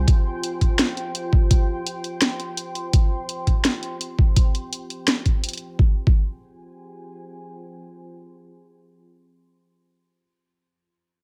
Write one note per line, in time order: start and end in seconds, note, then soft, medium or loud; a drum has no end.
0.00 5.75 F4 medium
0.00 5.75 C5 medium
0.00 5.75 G5 medium
0.07 5.77 C6 medium
0.07 kick loud
0.07 closed hi-hat medium
0.43 closed hi-hat medium
0.61 kick medium
0.61 closed hi-hat soft
0.79 snare loud
0.79 closed hi-hat medium
0.97 closed hi-hat soft
1.15 closed hi-hat medium
1.33 kick loud
1.51 kick loud
1.51 closed hi-hat medium
1.87 closed hi-hat medium
2.04 closed hi-hat soft
2.22 snare loud
2.22 closed hi-hat medium
2.40 closed hi-hat soft
2.57 closed hi-hat medium
2.75 closed hi-hat soft
2.93 kick loud
2.93 closed hi-hat medium
3.29 closed hi-hat medium
3.47 kick medium
3.47 closed hi-hat soft
3.65 snare loud
3.65 closed hi-hat medium
3.83 closed hi-hat soft
4.01 closed hi-hat medium
4.19 kick medium
4.36 kick loud
4.36 closed hi-hat medium
4.55 closed hi-hat soft
4.73 closed hi-hat medium
4.90 closed hi-hat soft
5.08 snare loud
5.08 closed hi-hat medium
5.26 kick medium
5.26 closed hi-hat soft
5.44 closed hi-hat medium
5.49 closed hi-hat soft
5.53 closed hi-hat soft
5.57 closed hi-hat soft
5.79 9.41 F4 medium
5.79 9.41 C5 medium
5.79 9.41 G5 medium
5.79 9.41 G#5 medium
5.79 kick loud
6.07 kick loud